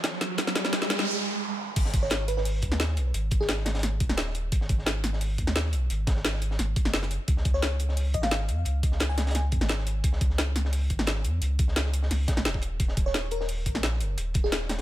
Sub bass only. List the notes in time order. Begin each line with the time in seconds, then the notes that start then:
Already playing: D#2
0.21 B1
0.38 G#1
1.76 G#1
2.62 D#2
2.97 B1
3.14 G#1
4.00 B1
4.09 D#1
4.52 G#1
5.38 D#2
5.73 B1
5.90 G#1
6.59 G#1
6.85 F#1
7.28 C#2
8.14 G#1
8.49 F2
8.66 C#2
9.52 F2
9.61 G#1
10.04 C#2
10.90 G#1
11.24 F2
11.42 C#2
12.11 C#2
12.37 B1
12.45 D#1
12.80 D#1
13.66 A#1
14.00 F#1
14.18 D#1